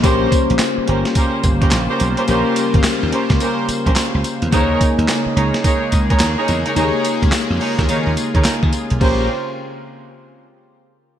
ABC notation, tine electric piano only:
X:1
M:4/4
L:1/8
Q:"Swing 16ths" 1/4=107
K:Bbdor
V:1 name="Tine electric piano"
[B,DGc]8 | [B,DGB]8 | [B,EAcd]8 | [B,EGAd]8 |
[B,DGc] z6 z |]